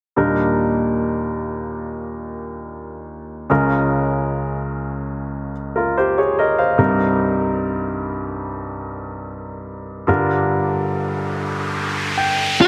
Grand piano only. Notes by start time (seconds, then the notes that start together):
0.16 D#2 A#2 G3 D4 D#4 A#4
3.50 C#2 C#3 G#3 C#4 F4 A#4
5.76 F4 A#4
5.98 G4 C5
6.18 G#4 C#5
6.39 A#4 D#5
6.59 C5 F5
6.78 C2 G2 G3 C4 D#4 A#4
10.07 G2 D3 G3 D4 F4 A#4
12.17 G5
12.60 G4 D5 F5